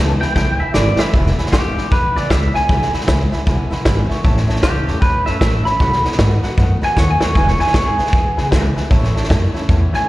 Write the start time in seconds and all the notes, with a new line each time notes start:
Already playing: C#2 E2 B2 E5 G#5 A5
0.00 E3 G#3 B3 E4 B5
0.21 E3 G#3 B3 E4 E5 G5 G#5 B5, muted upright bass stroke, snare
0.35 B1 E3 G#3 B3 E4 E5 G5 G#5 B5, kick, snare
0.59 E3 G#3 B3 E4 E5 G#5 B5, muted upright bass stroke
0.74 G#1 E2 B2 E3 G#3 B3 E4 D5 E5 G#5 B5, snare, hi-hat pedal
0.99 E3 G#3 B3 E5 G#5 B5, muted upright bass stroke, snare
1.13 E1 E2 B2 E3 G#3 B3 E4 E5 G#5 B5, kick, snare
1.26 snare
1.37 E3 G#3 B3 E4 E5 G#5 B5, muted upright bass stroke, snare
1.46 snare
1.52 G#1 E3 G#3 B3 E4 G4 E5 G#5 B5, kick, snare, hi-hat pedal
1.76 B1 E3 G#3 B3 E4 E5 G#5 B5, snare
1.90 B1 E2 B2 E3 G#3 B3 E4 B4 E5 G#5 B5, kick, snare
2.15 C#2 E3 G#3 B3 E4 D5 E5 G#5 B5, snare
2.29 C#2 E3 G#3 E4 E5 G#5 B5, kick, snare, hi-hat pedal
2.53 E3 G#3 B3 E4 E5 G#5 B5, muted upright bass stroke, snare
2.68 B1 E2 B2 E3 G#3 B3 E4 E5 G#5 B5, kick, snare
2.82 snare
2.92 E3 G#3 B3 E4 E5 G#5 B5, muted upright bass stroke, snare
3.01 snare
3.07 C#2 E3 G#3 B3 E4 E5 G#5 B5, kick, snare, hi-hat pedal
3.32 E3 G#3 B3 E4 E5 G#5 B5, muted upright bass stroke, snare
3.46 B1 E2 B2 E3 G#3 B3 E4 E5 G#5 B5, kick, snare
3.70 E3 G#3 B3 E4 E5 G#5 B5, muted upright bass stroke, snare
3.85 G#1 E3 G#3 B3 E4 E5 G#5 B5, kick, snare, hi-hat pedal
4.09 E3 G#3 B3 E4 E5 G#5 C#6, muted upright bass stroke, snare
4.24 A1 A2 E3 A3 C#4 E4 C#5 E5 A5, kick, snare
4.37 snare
4.47 A3 C#4 E4 C#5 E5 A5, muted upright bass stroke, snare
4.56 snare
4.62 C#2 E3 A3 E4 G4 C#5 E5 A5, kick, snare, hi-hat pedal
4.87 E2 A3 C#4 E4 C#5 E5 A5, snare
5.01 E2 A2 E3 A3 C#4 E4 B4 C#5 E5 A5, kick, snare
5.25 F#2 A3 C#4 E4 C#5 E5 A5, snare
5.40 A1 E3 A3 C#4 E4 C#5 E5 A5, kick, snare, hi-hat pedal
5.65 A3 C#4 E4 C#5 E5 A5 B5, muted upright bass stroke, snare
5.79 B1 B2 D#3 A3 B3 F#4 B4 D#5 F#5, kick, snare
5.92 snare
6.04 A3 B3 F#4 B4 D#5 F#5, muted upright bass stroke, snare
6.12 snare
6.18 G#2 D#3 A3 B3 F#4 B4 D#5 F#5, kick, snare, hi-hat pedal
6.43 A3 B3 F#4 B4 D#5 F#5, muted upright bass stroke, snare
6.57 F#2 B2 D#3 A3 B3 F#4 B4 D#5 F#5, kick, snare
6.81 A3 B3 F#4 B4 D#5 F#5 G#5, muted upright bass stroke, snare
6.96 D#2 D#3 A3 B3 B4 C#5 D#5 F#5, kick, snare, hi-hat pedal
7.10 G#5
7.20 A3 B3 F#4 B4 C#5 D#5 F#5, muted upright bass stroke, snare
7.35 E1 E2 B2 E3 G#3 B3 E4 B4 E5 G#5, kick, snare
7.48 C#5, snare
7.59 E3 G#3 B3 E4 B4 E5 G#5, muted upright bass stroke, snare
7.67 snare
7.73 G#1 B3 B4 C#5 E5 G#5, kick, snare, hi-hat pedal
7.77 E4
7.86 G#4
7.98 B1 E3 G#3 B3 E4 B4 E5 G#5, snare
8.06 snare
8.12 B1 E2 B2 E3 G#3 B3 E4 B4 E5 G#5, kick, snare
8.37 C#2 E3 G#3 B3 E4 B4 E5 G#5, snare
8.51 C#2 E3 G#3 B3 B4 E5 G#5, kick, snare, hi-hat pedal
8.55 E4
8.76 E3 G#3 B3 E4 B4 E5 G#5, muted upright bass stroke, snare
8.90 A1 A2 E3 A3 C#4 E4 C#5 E5 A5, kick, snare
9.04 snare
9.14 A3 C#4 E4 C#5 E5 A5, muted upright bass stroke, snare
9.24 snare
9.28 F#2 E3 A3 C#4 C#5 E5 A5, kick, snare, hi-hat pedal
9.32 E4
9.53 A3 C#4 E4 C#5 E5 A5, muted upright bass stroke, snare
9.68 E2 A2 E3 A3 C#4 E4 C#5 E5 A5, kick, snare
9.92 C#4 E4 C#5 E5 G#5 A5, muted upright bass stroke, snare
9.96 A3